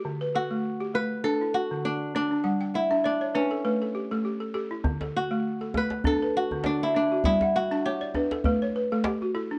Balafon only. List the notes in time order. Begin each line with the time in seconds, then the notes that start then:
Already playing: G4
0.05 D3
0.21 B4
0.35 A4
0.51 A3
0.80 G4
0.94 A3
1.24 D4
1.41 E4
1.71 D3
2.15 D4
2.31 D4
2.44 G3 F#5
2.61 G5
2.74 F#5
2.91 D4 E5
3.04 D5
3.21 C#5
3.35 D4 B4
3.51 A4
3.65 A3 B4
3.82 A4
3.95 G4
4.11 A3 A4
4.25 G4
4.40 A4
4.54 G4 A4
4.71 E4
4.84 D3
5.01 A4
5.31 A3
5.61 A4
5.75 A3
6.05 D4
6.22 B4
6.52 D3
6.65 D4
6.95 D4
7.12 F#4
7.25 G3 G5
7.42 F#5
7.56 G5
7.71 D4 A5
7.86 C#5
8.01 D5
8.15 D4 B4
8.32 A4
8.45 A3 B4
8.62 C#5
8.76 B4
8.92 A3 A4
9.05 G4
9.22 F#4
9.35 E4 A4
9.51 D4